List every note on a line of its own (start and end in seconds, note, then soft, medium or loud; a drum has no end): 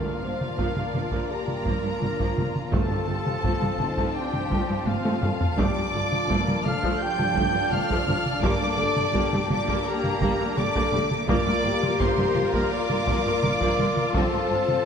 0.00 0.90 G2 medium
0.00 2.73 A#3 medium
0.00 2.68 D4 soft
0.00 1.27 F4 medium
0.00 5.54 F4 medium
0.00 5.55 F4 medium
0.00 0.23 A#4 medium
0.00 2.73 A#4 medium
0.00 2.69 D5 medium
0.00 1.29 F5 medium
0.04 0.12 G2 soft
0.04 0.12 F3 soft
0.04 0.11 A3 medium
0.22 0.30 G1 medium
0.22 0.30 G2 soft
0.22 0.29 F3 soft
0.22 0.29 A#3 soft
0.22 0.59 C5 medium
0.40 0.48 G2 soft
0.40 0.47 F3 medium
0.40 taiko mid medium
0.58 0.65 G1 medium
0.58 0.65 G2 medium
0.58 0.75 F3 medium
0.58 0.74 A#3 medium
0.58 1.30 A#4 medium
0.58 taiko medium
0.76 0.83 G2 medium
0.76 0.83 F3 soft
0.76 0.83 A3 medium
0.76 taiko mid soft
0.93 1.02 G1 soft
0.93 1.01 G2 medium
0.93 1.01 F3 medium
0.93 1.01 A#3 medium
0.93 taiko mid medium
1.11 1.19 G2 medium
1.11 1.28 F3 medium
1.11 1.28 A#3 medium
1.11 taiko medium
1.29 1.66 G4 medium
1.29 2.55 A#4 medium
1.29 2.69 A#5 loud
1.47 1.54 G2 soft
1.47 1.54 F3 soft
1.47 1.54 A#3 medium
1.47 taiko mid soft
1.65 1.73 G1 medium
1.65 1.72 G2 medium
1.65 1.81 F3 medium
1.65 1.82 A#3 medium
1.65 2.55 F4 medium
1.65 taiko medium
1.82 1.90 G2 medium
1.82 1.89 F3 medium
1.82 1.90 A3 medium
2.00 2.08 G1 medium
2.00 2.08 G2 medium
2.00 2.08 F3 medium
2.00 2.08 A#3 medium
2.00 taiko mid medium
2.18 2.25 G2 medium
2.18 2.35 F3 medium
2.18 2.35 A#3 medium
2.18 taiko medium
2.37 2.44 G1 medium
2.37 2.44 G2 medium
2.37 2.44 F3 medium
2.37 2.44 A3 medium
2.37 taiko mid medium
2.56 taiko mid medium
2.71 2.79 G1 medium
2.71 2.79 G2 medium
2.71 3.76 G2 medium
2.71 2.89 F3 medium
2.71 2.89 A3 medium
2.71 5.58 C4 medium
2.71 5.54 C4 medium
2.71 4.12 A4 medium
2.71 3.07 A4 medium
2.71 5.58 C5 medium
2.71 8.44 A5 medium
2.71 4.13 A5 loud
2.71 taiko loud
2.90 2.97 G2 medium
2.90 2.98 F3 medium
2.90 2.98 G3 medium
3.08 3.15 G1 medium
3.08 3.15 G2 medium
3.08 3.15 F3 medium
3.08 3.15 A3 medium
3.08 3.44 G4 medium
3.26 3.33 G2 medium
3.26 3.33 F3 medium
3.26 taiko mid medium
3.43 3.51 G1 medium
3.43 3.50 G2 medium
3.43 3.61 F3 medium
3.43 3.61 A3 medium
3.43 3.80 F4 medium
3.43 taiko medium
3.61 3.68 G2 medium
3.61 3.69 F3 medium
3.61 3.69 G3 medium
3.61 taiko mid medium
3.79 3.86 G1 medium
3.79 3.86 G2 medium
3.79 3.87 F3 medium
3.79 3.87 A3 medium
3.79 4.16 D#4 medium
3.79 taiko mid medium
3.97 4.04 G2 medium
3.97 4.14 F3 medium
3.97 4.14 A3 medium
3.97 taiko medium
4.15 4.87 D4 medium
4.15 4.85 G4 medium
4.15 4.87 G5 loud
4.32 4.40 G2 medium
4.32 4.40 F3 medium
4.32 4.40 A3 medium
4.32 taiko mid soft
4.50 4.58 G1 medium
4.50 4.58 G2 loud
4.50 4.66 F3 medium
4.50 4.67 A3 medium
4.50 taiko medium
4.67 4.76 G2 medium
4.67 4.75 F3 medium
4.67 4.75 G3 medium
4.85 4.94 G1 medium
4.85 4.94 G2 medium
4.85 4.93 F3 medium
4.85 4.93 A3 medium
4.85 5.22 C4 medium
4.85 5.58 F4 medium
4.85 5.57 F5 loud
4.85 taiko high medium
5.04 5.12 G2 medium
5.04 5.20 F3 medium
5.04 5.21 A3 medium
5.04 taiko high medium
5.21 5.29 G1 medium
5.21 5.30 G2 medium
5.21 5.28 F3 medium
5.21 5.29 G3 medium
5.21 5.58 A4 medium
5.21 taiko low-mid medium
5.41 taiko low loud
5.57 5.65 G1 medium
5.57 5.65 G2 medium
5.57 8.43 F3 medium
5.57 5.74 F3 medium
5.57 5.74 A3 medium
5.57 11.30 D4 medium
5.57 8.39 F4 medium
5.57 5.93 G4 medium
5.57 11.29 A4 medium
5.57 11.28 D5 medium
5.57 6.63 D5 loud
5.57 6.65 D6 loud
5.57 taiko loud
5.75 5.83 G2 medium
5.75 5.82 F3 medium
5.75 5.82 G3 medium
5.93 6.01 G1 medium
5.93 6.01 G2 medium
5.93 6.00 F3 medium
5.93 6.00 A3 medium
5.93 6.30 F4 medium
6.10 6.19 G2 medium
6.10 6.18 F3 medium
6.10 taiko mid medium
6.28 6.36 G1 medium
6.28 6.36 G2 medium
6.28 6.45 F3 medium
6.28 6.45 A3 medium
6.28 6.66 A#3 medium
6.28 taiko medium
6.46 6.55 G2 medium
6.46 6.54 F3 medium
6.46 6.54 G3 medium
6.46 taiko mid medium
6.64 6.71 G1 medium
6.64 6.72 G2 medium
6.64 6.72 F3 medium
6.64 6.72 A3 medium
6.64 7.02 A4 medium
6.64 7.01 F5 medium
6.64 7.01 F6 loud
6.64 taiko mid medium
6.82 6.90 G2 medium
6.82 6.99 F3 loud
6.82 6.99 A3 loud
6.82 taiko medium
7.01 7.37 G4 medium
7.01 7.72 G5 loud
7.01 7.72 G6 loud
7.18 7.26 G2 medium
7.18 7.25 F3 medium
7.18 7.25 A3 medium
7.18 taiko mid medium
7.35 7.42 G1 loud
7.35 7.43 G2 loud
7.35 7.52 F3 medium
7.35 7.53 A3 loud
7.35 8.42 F4 medium
7.35 taiko medium
7.53 7.61 G2 medium
7.53 7.61 F3 medium
7.53 7.61 G3 medium
7.70 7.78 G1 medium
7.70 7.79 G2 medium
7.70 7.79 F3 medium
7.70 7.79 A3 medium
7.70 8.44 F5 loud
7.70 8.44 F6 loud
7.70 taiko mid medium
7.90 7.97 G2 medium
7.90 8.06 F3 loud
7.90 8.07 A3 medium
7.90 taiko medium
8.07 8.14 G1 medium
8.07 8.15 G2 medium
8.07 8.15 F3 medium
8.07 8.15 G3 medium
8.07 taiko mid medium
8.26 taiko mid medium
8.42 8.49 G1 loud
8.42 8.51 G2 loud
8.42 8.60 G3 loud
8.42 8.79 A#3 loud
8.42 14.15 A#3 loud
8.42 8.60 A#3 loud
8.42 11.29 G4 medium
8.42 9.49 D5 loud
8.42 9.48 D6 loud
8.42 taiko loud
8.61 8.68 G2 medium
8.61 8.68 G3 medium
8.61 8.68 A3 medium
8.78 8.85 G1 medium
8.78 8.86 G2 medium
8.78 8.86 G3 medium
8.78 8.86 A#3 medium
8.78 9.15 A4 loud
8.96 9.04 G2 medium
8.96 9.03 G3 medium
8.96 9.03 A3 medium
8.96 taiko mid medium
9.13 9.21 G1 medium
9.13 9.22 G2 loud
9.13 9.30 G3 medium
9.13 9.31 A#3 loud
9.13 9.49 G4 medium
9.13 taiko medium
9.31 9.40 G2 medium
9.31 9.39 G3 medium
9.31 9.39 A3 medium
9.31 taiko mid medium
9.49 9.57 G1 medium
9.49 9.58 G2 medium
9.49 9.57 G3 medium
9.49 9.57 A#3 medium
9.49 9.86 F4 medium
9.49 9.86 D5 medium
9.49 9.86 D6 loud
9.49 taiko mid medium
9.67 9.75 G2 medium
9.67 9.85 G3 medium
9.67 9.85 A#3 loud
9.67 taiko medium
9.86 10.58 A#3 loud
9.86 10.56 G4 medium
9.86 10.58 A#5 loud
10.03 10.11 G2 medium
10.03 10.11 G3 medium
10.03 10.11 A#3 medium
10.03 taiko mid medium
10.21 10.29 G1 loud
10.21 10.29 G2 loud
10.21 10.38 G3 loud
10.21 10.38 A#3 loud
10.21 taiko medium
10.39 10.47 G2 medium
10.39 10.47 G3 medium
10.39 10.47 A3 medium
10.56 10.64 G1 medium
10.56 10.64 G2 medium
10.56 10.64 G3 medium
10.56 10.64 A#3 medium
10.56 11.11 A4 medium
10.56 11.12 D5 loud
10.56 11.27 D6 loud
10.56 taiko mid medium
10.74 10.82 G2 loud
10.74 10.90 G3 loud
10.74 10.91 A#3 medium
10.74 taiko medium
10.92 11.00 G1 medium
10.92 11.00 G2 medium
10.92 10.99 G3 medium
10.92 11.00 A3 medium
10.92 taiko mid medium
11.11 taiko mid medium
11.28 11.36 G1 loud
11.28 11.36 G2 loud
11.28 11.45 F3 loud
11.28 11.45 A#3 loud
11.28 14.85 F4 medium
11.28 14.85 F4 loud
11.28 11.64 A#4 medium
11.28 14.15 A#4 loud
11.28 14.11 A#4 medium
11.28 11.99 D5 loud
11.28 14.11 D5 medium
11.28 11.99 D6 loud
11.28 taiko loud
11.46 11.54 G2 medium
11.46 11.53 F3 medium
11.46 11.54 A3 medium
11.63 11.71 G1 medium
11.63 11.72 G2 medium
11.63 11.71 F3 medium
11.63 11.71 A#3 medium
11.63 12.71 G4 loud
11.82 11.90 G2 medium
11.82 11.89 F3 medium
11.82 taiko mid medium
12.00 12.07 G1 medium
12.00 12.08 G2 loud
12.00 12.15 F3 loud
12.00 12.17 A#3 medium
12.00 12.54 C5 medium
12.00 12.54 C6 loud
12.00 taiko medium
12.17 12.26 G2 medium
12.17 12.24 F3 medium
12.17 12.24 A3 medium
12.17 taiko mid medium
12.34 12.43 G1 medium
12.34 12.43 G2 medium
12.34 12.42 F3 medium
12.34 12.42 A#3 medium
12.34 taiko mid medium
12.53 12.61 G2 medium
12.53 12.70 F3 medium
12.53 12.70 A#3 medium
12.53 12.72 A#4 medium
12.53 12.72 A#5 medium
12.53 taiko medium
12.72 13.08 F4 medium
12.72 14.15 D5 loud
12.72 14.12 D6 loud
12.89 12.97 G2 medium
12.89 12.96 F3 medium
12.89 12.97 A#3 medium
12.89 taiko mid medium
13.07 13.14 G1 medium
13.07 13.15 G2 loud
13.07 13.24 F3 medium
13.07 13.24 A#3 medium
13.07 14.16 A#4 medium
13.07 taiko medium
13.25 13.33 G2 medium
13.25 13.32 F3 medium
13.25 13.32 A3 medium
13.43 13.50 G1 medium
13.43 13.51 G2 medium
13.43 13.50 F3 medium
13.43 13.50 A#3 medium
13.43 taiko mid medium
13.61 13.68 G2 medium
13.61 13.78 F3 medium
13.61 13.78 A#3 medium
13.61 taiko medium
13.78 13.86 G1 medium
13.78 13.87 G2 medium
13.78 13.86 F3 medium
13.78 13.86 A3 medium
13.78 taiko mid medium
13.97 taiko mid medium
14.14 14.22 G1 medium
14.14 14.23 G2 medium
14.14 14.31 F3 medium
14.14 14.32 C4 medium
14.14 14.85 C4 medium
14.14 14.85 A4 medium
14.14 14.85 C5 medium
14.14 14.85 A5 loud
14.14 taiko loud
14.33 14.40 G2 medium
14.33 14.40 F3 medium
14.33 14.40 A#3 medium
14.50 14.57 G1 medium
14.50 14.58 G2 medium
14.50 14.58 F3 medium
14.50 14.58 C4 medium
14.68 14.76 G2 medium
14.68 14.76 F3 medium
14.68 14.75 A3 medium
14.68 taiko mid medium